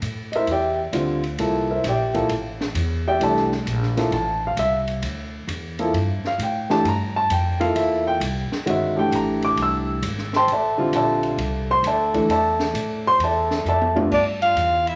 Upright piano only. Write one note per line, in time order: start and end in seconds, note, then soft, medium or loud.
0.32 0.49 A#4 medium
0.32 0.34 D#5 medium
0.32 0.49 E5 medium
0.36 0.49 E4 medium
0.36 0.49 C5 medium
0.51 0.79 G4 medium
0.51 0.79 D5 medium
0.51 0.79 E5 medium
0.51 0.79 G5 medium
0.93 1.20 D3 medium
0.93 1.20 G3 medium
0.93 1.20 C4 medium
0.93 1.21 F4 medium
1.39 1.66 F3 medium
1.39 1.66 A#3 medium
1.39 1.66 E4 medium
1.39 1.67 A4 medium
1.71 1.85 E4 medium
1.71 1.85 A#4 medium
1.71 1.85 C5 medium
1.71 1.84 E5 medium
1.88 2.16 G4 medium
1.88 2.16 D5 medium
1.88 2.16 E5 medium
1.88 2.15 G5 medium
2.14 2.28 F3 medium
2.14 2.28 A#3 medium
2.14 2.28 E4 medium
2.14 2.28 A4 medium
3.08 3.20 G4 medium
3.08 3.21 D5 medium
3.08 3.21 E5 medium
3.08 3.21 G5 medium
3.20 3.48 E3 medium
3.20 3.48 A3 medium
3.20 3.48 D4 medium
3.20 3.48 G4 medium
3.20 3.41 A4 medium
3.20 3.41 D5 medium
3.20 3.41 E5 medium
3.20 3.41 A5 medium
3.97 4.10 F3 medium
3.97 4.10 A#3 medium
3.97 4.10 E4 medium
3.97 4.11 A4 medium
4.13 4.48 A5 medium
4.47 4.55 F5 medium
4.59 4.77 E5 loud
5.79 5.92 F3 medium
5.79 5.92 A#3 medium
5.79 5.93 E4 medium
5.79 5.93 A4 medium
6.27 6.40 F5 medium
6.43 6.70 G5 medium
6.70 6.83 E3 medium
6.70 6.83 A3 medium
6.70 6.83 D4 medium
6.70 6.83 G4 medium
6.70 6.85 A5 loud
6.88 7.16 A#5 loud
7.16 7.30 A5 loud
7.32 7.60 G5 medium
7.60 8.18 A#3 medium
7.60 8.18 E4 medium
7.60 8.17 F4 medium
7.60 8.18 A4 medium
7.60 7.75 F5 medium
7.76 8.05 E5 medium
8.07 8.16 G5 loud
8.66 8.93 D#3 medium
8.66 8.93 G#3 medium
8.66 8.94 C#4 medium
8.66 8.94 F#4 medium
8.70 8.97 E5 medium
8.96 9.93 E3 medium
8.96 9.93 A3 medium
8.96 9.93 D4 medium
8.96 9.93 G4 medium
8.96 9.12 G5 medium
9.15 9.43 A#5 medium
9.45 9.58 D6 loud
9.62 10.02 E6 loud
10.36 10.49 C5 medium
10.36 10.49 G5 medium
10.36 10.49 A5 medium
10.36 10.49 C6 loud
10.52 10.93 A4 medium
10.52 10.93 D5 medium
10.52 10.93 E5 medium
10.52 10.92 A5 medium
10.78 11.35 D3 medium
10.78 11.36 G3 medium
10.78 11.36 C4 medium
10.78 11.36 F4 medium
10.96 11.67 A4 medium
10.96 11.66 D5 medium
10.96 11.67 E5 medium
10.96 11.66 A5 medium
11.71 11.84 C5 medium
11.71 11.85 C6 loud
11.87 12.13 A4 medium
11.87 12.28 D5 medium
11.87 12.28 E5 medium
11.87 12.28 A5 medium
12.14 12.28 E3 medium
12.14 12.28 A3 medium
12.14 12.28 D4 medium
12.14 12.28 A4 medium
12.31 13.02 A4 medium
12.31 13.02 D5 medium
12.31 13.02 E5 medium
12.31 13.02 A5 medium
13.07 13.21 C5 medium
13.07 13.21 C6 loud
13.24 13.65 A4 medium
13.24 13.65 D5 medium
13.24 13.65 E5 medium
13.24 13.64 A5 medium
13.69 14.03 A4 medium
13.69 14.03 D5 medium
13.69 14.03 E5 medium
13.69 14.03 A5 medium
13.95 14.09 G2 medium
13.95 14.10 A3 medium
13.95 14.09 B3 medium
13.95 14.10 D4 medium
13.95 14.10 F4 medium